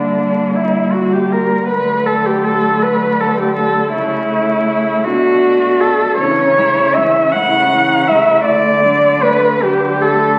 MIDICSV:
0, 0, Header, 1, 5, 480
1, 0, Start_track
1, 0, Key_signature, 2, "major"
1, 0, Tempo, 767263
1, 1061, Time_signature, 6, 3, 24, 8
1, 1537, Tempo, 750000
1, 5377, Tempo, 774194
1, 6574, End_track
2, 0, Start_track
2, 0, Title_t, "Cello"
2, 0, Program_c, 0, 42
2, 0, Note_on_c, 0, 62, 43
2, 347, Note_on_c, 0, 64, 45
2, 356, Note_off_c, 0, 62, 0
2, 580, Note_on_c, 0, 66, 39
2, 589, Note_off_c, 0, 64, 0
2, 707, Note_on_c, 0, 67, 40
2, 717, Note_off_c, 0, 66, 0
2, 825, Note_on_c, 0, 70, 45
2, 834, Note_off_c, 0, 67, 0
2, 1047, Note_off_c, 0, 70, 0
2, 1051, Note_on_c, 0, 71, 50
2, 1286, Note_on_c, 0, 69, 46
2, 1296, Note_off_c, 0, 71, 0
2, 1411, Note_on_c, 0, 67, 44
2, 1420, Note_off_c, 0, 69, 0
2, 1528, Note_on_c, 0, 69, 49
2, 1538, Note_off_c, 0, 67, 0
2, 1771, Note_on_c, 0, 71, 53
2, 1781, Note_off_c, 0, 69, 0
2, 2013, Note_on_c, 0, 69, 47
2, 2023, Note_off_c, 0, 71, 0
2, 2134, Note_off_c, 0, 69, 0
2, 2142, Note_on_c, 0, 67, 47
2, 2245, Note_off_c, 0, 67, 0
2, 2249, Note_on_c, 0, 69, 46
2, 2474, Note_off_c, 0, 69, 0
2, 2478, Note_on_c, 0, 64, 53
2, 3190, Note_on_c, 0, 66, 60
2, 3200, Note_off_c, 0, 64, 0
2, 3680, Note_on_c, 0, 69, 54
2, 3690, Note_off_c, 0, 66, 0
2, 3916, Note_off_c, 0, 69, 0
2, 3920, Note_on_c, 0, 73, 67
2, 4411, Note_on_c, 0, 76, 64
2, 4421, Note_off_c, 0, 73, 0
2, 4650, Note_on_c, 0, 78, 67
2, 4660, Note_off_c, 0, 76, 0
2, 5132, Note_on_c, 0, 76, 64
2, 5142, Note_off_c, 0, 78, 0
2, 5371, Note_off_c, 0, 76, 0
2, 5375, Note_on_c, 0, 74, 69
2, 5853, Note_on_c, 0, 71, 65
2, 5862, Note_off_c, 0, 74, 0
2, 6100, Note_on_c, 0, 67, 56
2, 6109, Note_off_c, 0, 71, 0
2, 6343, Note_on_c, 0, 69, 51
2, 6353, Note_off_c, 0, 67, 0
2, 6574, Note_off_c, 0, 69, 0
2, 6574, End_track
3, 0, Start_track
3, 0, Title_t, "Cello"
3, 0, Program_c, 1, 42
3, 0, Note_on_c, 1, 58, 33
3, 1069, Note_on_c, 1, 57, 38
3, 1078, Note_off_c, 1, 58, 0
3, 2491, Note_off_c, 1, 57, 0
3, 2495, Note_on_c, 1, 57, 42
3, 3207, Note_on_c, 1, 62, 43
3, 3217, Note_off_c, 1, 57, 0
3, 3929, Note_off_c, 1, 62, 0
3, 3933, Note_on_c, 1, 61, 44
3, 4173, Note_on_c, 1, 64, 39
3, 4182, Note_off_c, 1, 61, 0
3, 4406, Note_on_c, 1, 61, 40
3, 4416, Note_off_c, 1, 64, 0
3, 4654, Note_on_c, 1, 64, 40
3, 4663, Note_off_c, 1, 61, 0
3, 4885, Note_off_c, 1, 64, 0
3, 4889, Note_on_c, 1, 61, 39
3, 5130, Note_on_c, 1, 64, 41
3, 5139, Note_off_c, 1, 61, 0
3, 5366, Note_off_c, 1, 64, 0
3, 5370, Note_on_c, 1, 57, 44
3, 5614, Note_on_c, 1, 62, 39
3, 5623, Note_off_c, 1, 57, 0
3, 5856, Note_on_c, 1, 57, 37
3, 5865, Note_off_c, 1, 62, 0
3, 6092, Note_on_c, 1, 62, 38
3, 6102, Note_off_c, 1, 57, 0
3, 6330, Note_off_c, 1, 62, 0
3, 6333, Note_on_c, 1, 57, 39
3, 6574, Note_off_c, 1, 57, 0
3, 6574, End_track
4, 0, Start_track
4, 0, Title_t, "Cello"
4, 0, Program_c, 2, 42
4, 0, Note_on_c, 2, 55, 32
4, 1058, Note_on_c, 2, 54, 36
4, 1067, Note_off_c, 2, 55, 0
4, 2484, Note_off_c, 2, 54, 0
4, 2487, Note_on_c, 2, 57, 38
4, 3191, Note_off_c, 2, 57, 0
4, 3208, Note_on_c, 2, 57, 40
4, 3920, Note_off_c, 2, 57, 0
4, 3931, Note_on_c, 2, 52, 40
4, 4171, Note_on_c, 2, 57, 37
4, 4181, Note_off_c, 2, 52, 0
4, 4421, Note_on_c, 2, 52, 36
4, 4431, Note_off_c, 2, 57, 0
4, 4665, Note_on_c, 2, 57, 41
4, 4674, Note_off_c, 2, 52, 0
4, 4896, Note_off_c, 2, 57, 0
4, 4900, Note_on_c, 2, 52, 37
4, 5146, Note_on_c, 2, 57, 40
4, 5155, Note_off_c, 2, 52, 0
4, 5373, Note_off_c, 2, 57, 0
4, 5377, Note_on_c, 2, 57, 40
4, 5616, Note_on_c, 2, 54, 38
4, 5625, Note_off_c, 2, 57, 0
4, 5851, Note_on_c, 2, 57, 35
4, 5861, Note_off_c, 2, 54, 0
4, 6094, Note_on_c, 2, 54, 40
4, 6103, Note_off_c, 2, 57, 0
4, 6331, Note_off_c, 2, 54, 0
4, 6334, Note_on_c, 2, 57, 35
4, 6574, Note_off_c, 2, 57, 0
4, 6574, End_track
5, 0, Start_track
5, 0, Title_t, "Cello"
5, 0, Program_c, 3, 42
5, 0, Note_on_c, 3, 50, 33
5, 1037, Note_off_c, 3, 50, 0
5, 1058, Note_on_c, 3, 50, 37
5, 2465, Note_off_c, 3, 50, 0
5, 2489, Note_on_c, 3, 49, 42
5, 3215, Note_on_c, 3, 47, 45
5, 3224, Note_off_c, 3, 49, 0
5, 3934, Note_off_c, 3, 47, 0
5, 3938, Note_on_c, 3, 49, 48
5, 4576, Note_off_c, 3, 49, 0
5, 4666, Note_on_c, 3, 49, 51
5, 5295, Note_off_c, 3, 49, 0
5, 5382, Note_on_c, 3, 50, 53
5, 6011, Note_off_c, 3, 50, 0
5, 6098, Note_on_c, 3, 50, 51
5, 6574, Note_off_c, 3, 50, 0
5, 6574, End_track
0, 0, End_of_file